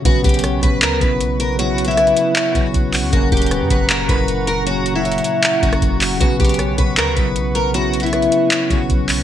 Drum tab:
HH |x-----------x--x--x--x--x-----------x-----------x-----------x-----------x-----------x-----------|x-----------x---x---x---x-----x-----x-----------x-----------x-----------x-----------o-----------|x-----------x--x--x--x--x-----------x-----------x-----------x-----------x-----------x-----------|x-----------x-----------x---x---x---x-----------x-----------x-----x-----x-----------o-----------|
CP |------------------------------------------------x-----------------------------------------------|------------------------------------------------x-----------------------------------x-----------|------------------------------------------------x-----------------------------------------------|------------------------------------------------x-----------------------------------x-----------|
SD |------------------------r-----------------------------------------------------------------------|------------------------r-----------------------------------------------------------------------|------------------------r-----------------------------------------------------------------------|------------------------------------------------------------------r-----------------------------|
BD |o-----------o-----------------------o-----------------------o-----------------------------------|------------------------------------------------------------o-----------o-----------------------|o-----------o-----------------------o-----------------------o-----------------------------------|------------------------------------------------------------o-----------o-----------------------|

HH |x-----------x--x--x--x--x-----------x-----------x-----------x-----------x-----------x-----------|x-----------x---x---x---x-----x-----x-----------x-----------x-----------x-----------o-----------|
CP |------------------------------------------------x-----------------------------------------------|------------------------------------------------x-----------------------------------x-----------|
SD |------------------------r-----------------------------------------------------------------------|------------------------r-----------------------------------------------------------------------|
BD |o-----------o-----------------------o-----------------------o-----------------------------------|------------------------------------------------------------o-----------o-----------------------|